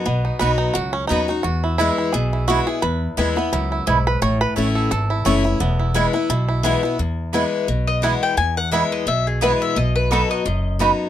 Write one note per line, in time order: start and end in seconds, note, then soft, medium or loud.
0.00 0.20 B4 medium
0.06 0.28 B1 medium
0.06 0.72 B2 medium
0.06 0.96 B3 medium
0.25 0.57 D#4 medium
0.39 0.70 B1 medium
0.39 0.73 F#3 medium
0.39 0.50 B3 loud
0.39 0.74 B3 medium
0.39 0.74 D#4 medium
0.39 0.50 F#4 medium
0.39 0.74 F#4 medium
0.39 0.58 B4 loud
0.39 0.50 D#5 loud
0.39 0.50 B5 loud
0.58 0.75 D#4 medium
0.74 1.05 C#2 medium
0.74 1.41 F#2 loud
0.74 0.94 F#4 medium
0.93 1.07 C#4 medium
1.07 1.39 D#2 medium
1.07 1.28 F#3 medium
1.07 1.19 B3 medium
1.07 1.28 B3 medium
1.07 1.28 D#4 loud
1.07 1.29 D#4 medium
1.07 1.20 F#4 medium
1.07 1.20 D#5 medium
1.07 1.20 B5 loud
1.12 1.27 F#4 medium
1.28 1.45 D#4 medium
1.28 1.45 D#4 soft
1.28 1.43 F#4 medium
1.43 2.11 E2 medium
1.43 1.89 E2 medium
1.43 1.78 F#4 medium
1.64 1.78 E4 medium
1.78 2.12 E3 medium
1.78 2.13 G#3 medium
1.78 1.89 B3 medium
1.78 2.13 B3 medium
1.78 1.97 E4 medium
1.78 1.89 E4 medium
1.78 2.13 E4 loud
1.78 1.89 B4 medium
1.78 1.89 G#5 medium
1.98 2.33 E4 medium
2.13 2.58 B1 medium
2.13 2.80 B2 loud
2.13 2.45 G#4 medium
2.33 3.17 E4 medium
2.48 2.66 E3 medium
2.48 2.67 G#3 medium
2.48 2.58 B3 medium
2.48 2.67 B3 medium
2.48 2.58 E4 medium
2.48 2.65 E4 loud
2.48 2.66 F#4 medium
2.48 2.58 B4 medium
2.48 2.59 G#5 loud
2.67 2.83 B3 soft
2.67 2.82 E4 medium
2.67 2.82 G#4 medium
2.82 3.49 E2 medium
2.82 3.05 E2 loud
2.82 3.67 B4 medium
3.17 3.47 D#2 medium
3.17 3.36 E3 medium
3.17 3.36 G#3 medium
3.17 3.27 B3 medium
3.17 3.37 B3 medium
3.17 3.28 E4 medium
3.17 3.52 E4 medium
3.17 3.35 E4 medium
3.17 3.28 B4 loud
3.17 3.28 G#5 loud
3.36 3.84 B3 medium
3.36 3.53 B3 medium
3.36 3.52 E4 medium
3.53 3.82 C#2 medium
3.53 3.86 F#2 loud
3.53 3.72 E4 medium
3.72 3.87 E4 medium
3.86 4.17 B1 medium
3.86 4.20 G#2 medium
3.86 3.97 B3 medium
3.86 3.97 E4 medium
3.86 4.07 E4 medium
3.86 3.97 B4 medium
3.86 3.97 G#5 loud
4.07 4.22 B4 loud
4.22 4.44 A1 loud
4.22 4.88 A2 medium
4.22 4.41 C#5 loud
4.41 4.56 B4 loud
4.56 4.86 A1 medium
4.56 4.89 E3 medium
4.56 4.66 A3 medium
4.56 4.90 A3 medium
4.56 4.90 C#4 medium
4.56 4.66 E4 medium
4.56 5.10 E4 medium
4.56 4.90 E4 loud
4.56 4.66 C#5 medium
4.56 4.67 A5 loud
4.75 4.90 A4 medium
4.91 5.21 G#1 medium
4.91 5.57 E2 loud
4.91 5.27 A4 medium
5.10 5.45 E4 medium
5.25 5.55 F#1 medium
5.25 5.44 E3 medium
5.25 5.35 A3 medium
5.25 5.44 A3 loud
5.25 5.44 C#4 loud
5.25 5.36 E4 medium
5.25 5.43 E4 loud
5.25 5.79 C#5 medium
5.25 5.36 C#5 medium
5.25 5.36 A5 loud
5.44 5.61 C#4 soft
5.44 5.59 E4 medium
5.44 5.79 E4 medium
5.60 6.04 E1 loud
5.60 6.26 E2 medium
5.60 6.10 B3 medium
5.79 5.94 E4 medium
5.94 6.13 E3 medium
5.94 6.13 G#3 medium
5.94 6.05 B3 loud
5.94 6.14 B3 medium
5.94 6.05 E4 loud
5.94 6.13 E4 medium
5.94 6.12 E4 medium
5.94 6.05 B4 loud
5.94 6.05 G#5 loud
6.13 6.30 B3 medium
6.13 6.29 E4 medium
6.29 6.74 B1 medium
6.29 6.96 B2 loud
6.29 6.47 E4 medium
6.48 6.82 E4 medium
6.63 6.82 E3 medium
6.63 6.83 G#3 loud
6.63 6.74 B3 medium
6.63 6.99 B3 medium
6.63 6.83 B3 medium
6.63 6.74 E4 loud
6.63 6.82 E4 loud
6.63 6.74 B4 loud
6.63 6.74 G#5 loud
6.83 6.99 B3 medium
6.83 6.98 E4 medium
6.83 6.99 E4 medium
6.99 7.43 E2 medium
6.99 7.65 E2 medium
7.33 7.66 E3 medium
7.33 7.67 G#3 medium
7.33 7.43 B3 medium
7.33 7.42 B3 medium
7.33 7.67 B3 medium
7.33 7.43 E4 medium
7.33 7.37 E4 medium
7.33 7.67 E4 medium
7.33 7.43 B4 loud
7.33 7.44 G#5 loud
7.68 8.12 B1 medium
7.68 8.34 B2 medium
7.87 8.03 D#5 medium
8.02 8.36 E3 medium
8.02 8.36 G#3 medium
8.02 8.13 B3 medium
8.02 8.12 B3 medium
8.02 8.36 B3 medium
8.02 8.13 E4 medium
8.02 8.06 E4 medium
8.02 8.37 E4 medium
8.02 8.13 B4 medium
8.02 8.21 F#5 medium
8.02 8.13 G#5 loud
8.23 8.37 G5 medium
8.37 9.04 E2 medium
8.37 8.81 E2 loud
8.37 8.56 G#5 medium
8.57 8.72 F#5 medium
8.71 9.05 E3 medium
8.71 9.05 G#3 medium
8.71 8.82 B3 medium
8.71 8.81 B3 medium
8.71 9.06 B3 medium
8.71 8.82 E4 medium
8.71 8.76 E4 medium
8.71 9.06 E4 medium
8.71 8.82 B4 loud
8.71 8.91 E5 medium
8.71 8.82 G#5 loud
8.92 9.07 D#5 medium
9.06 9.51 B1 medium
9.06 9.73 B2 medium
9.06 9.26 E5 medium
9.27 9.42 G#4 medium
9.41 9.75 E3 medium
9.41 9.75 G#3 loud
9.41 9.51 B3 medium
9.41 9.50 B3 medium
9.41 9.75 B3 loud
9.41 9.52 E4 medium
9.41 9.45 E4 medium
9.41 9.76 E4 loud
9.41 9.52 B4 loud
9.41 9.61 B4 medium
9.41 9.52 G#5 loud
9.62 9.76 E5 medium
9.76 10.20 B1 loud
9.76 10.43 B2 medium
9.76 9.95 D#5 medium
9.96 10.11 B4 medium
10.11 10.44 F#3 medium
10.11 10.21 B3 medium
10.11 10.20 B3 medium
10.11 10.45 B3 medium
10.11 10.20 D#4 medium
10.11 10.45 D#4 medium
10.11 10.21 F#4 loud
10.11 10.20 F#4 medium
10.11 10.45 F#4 loud
10.11 10.30 A4 medium
10.11 10.21 D#5 medium
10.11 10.21 B5 medium
10.31 10.77 D#5 medium
10.46 10.90 F#1 medium
10.46 11.09 F#2 medium
10.79 11.09 F#3 medium
10.79 10.90 B3 medium
10.79 11.09 B3 medium
10.79 10.89 B3 medium
10.79 11.09 D#4 medium
10.79 10.89 D#4 medium
10.79 10.90 F#4 loud
10.79 11.09 F#4 medium
10.79 10.90 F#4 medium
10.79 10.91 D#5 medium
10.79 10.91 B5 loud